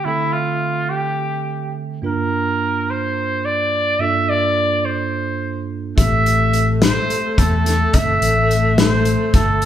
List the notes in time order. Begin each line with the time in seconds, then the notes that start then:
0.05 D3 A3 C4 E4 A4 E5
0.33 F4
0.90 G4
2.02 G2 A#3 D4 F4 A#4
2.06 A#4
2.90 C5
3.45 D5
3.99 G2 A#3 D4 F4 A4 E5
4.29 D5
4.85 C5
5.96 A1 A3 C4 E4 G4 E5, kick, closed hi-hat
6.26 closed hi-hat
6.53 closed hi-hat
6.82 C5, snare, closed hi-hat
7.10 closed hi-hat
7.38 E2 A4, kick, closed hi-hat
7.66 snare, closed hi-hat
7.93 G1 A3 C4 E4 A4 E5, kick, closed hi-hat
8.21 A1, closed hi-hat
8.51 closed hi-hat
8.78 C5, snare, closed hi-hat
9.05 closed hi-hat
9.34 G1 A4, kick, snare, closed hi-hat
9.62 closed hi-hat